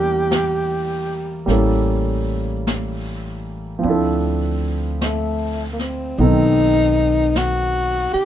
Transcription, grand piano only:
Already playing: G3 A#3 D4 E4 A#4
1.46 G3 A#3 C#4 E4
1.51 A4
3.79 F3 C4
3.84 D4 E4
3.90 A4
6.20 D#3 B3 C4 D#4 A4

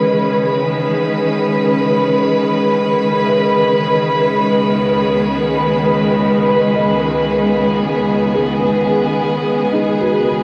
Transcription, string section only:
Already playing: D#3 E3 G#3 C#4 B4
4.19 C#2
4.65 B3
5.12 G#4

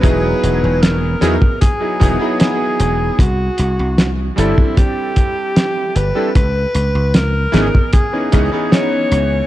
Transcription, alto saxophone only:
0.04 B4
0.82 A#4
1.61 G#4
2.41 G#4
3.20 F#4
4.38 E4
4.77 G4
5.96 B4
6.36 B4
7.15 A#4
7.93 G#4
8.72 C#5

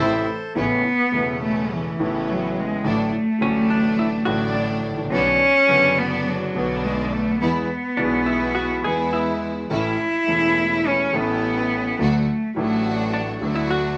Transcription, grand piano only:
0.00 A1 A2 C3 E3 A3 E4
0.55 A1 A2 C#3 A3 B3 E4
1.11 E1 E2 C#3 A3 B3 E4
1.98 A1 A2 C#3 A3 B3 E4
2.84 A1 A2 D3 F#3 A3 F#4
3.39 A1 A2 D3 F#3 A3
3.43 F#4
4.25 A1 A2 D3 F#3 A3 F#4
4.91 G#1
4.98 A1
5.05 A#1
5.11 B1 B2 D3 F#3 B3 F#4
5.67 F#1 F#2 D3 F#3 B3 F#4
6.54 B1 B2 D3 F#3 B3
6.58 F#4
7.41 E2 E3 G#3 B3 G#4
7.97 B1 B2 E3 G#3 B3 G#4
8.82 E2 E3 G#3 B3
8.87 G#4
9.70 A1 A2 E3 A3 C#4 A4
10.26 E1 E2 E3 A3 C#4 A4
11.12 A1 A2 E3 A3 C#4 A4
11.99 D2 D3 F#3 A3 D4 A4
12.54 A1 A2 F#3 A3 D4 A4
13.41 D2 D3 F#3 A3 D4 A4

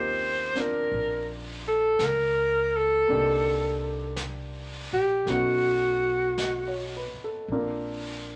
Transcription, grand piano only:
Already playing: A#3 C4 D#4 F4 G4
0.55 C4 D4 F4
3.07 A#3 C4 D4
3.12 D#4 G4
5.26 A3 B3 C#4
5.30 D#4 F#4
6.39 D#5
6.68 C#5
6.97 B4
7.24 A4
7.51 A#3 C4 D4 F4 A#4

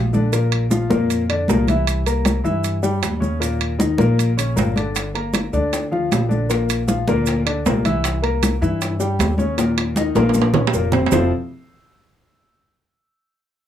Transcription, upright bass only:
Already playing: A#1
0.91 F2
1.49 C2
2.45 G2
3.02 D#2
3.99 A#1
4.57 G1
5.53 D2
6.11 A#1
7.08 D2
7.66 C2
8.62 G2
9.19 D#2
10.16 A#1
10.74 F1
11.12 F1

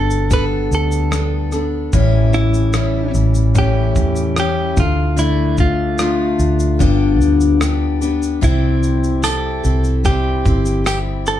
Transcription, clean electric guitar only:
Already playing: A4
0.33 B4
0.75 A4
2.34 E4
3.58 G4
4.40 G4
4.80 F4
5.19 E4
5.60 F4
8.44 E4
9.24 A4
10.06 G4
10.87 G4
11.28 A4

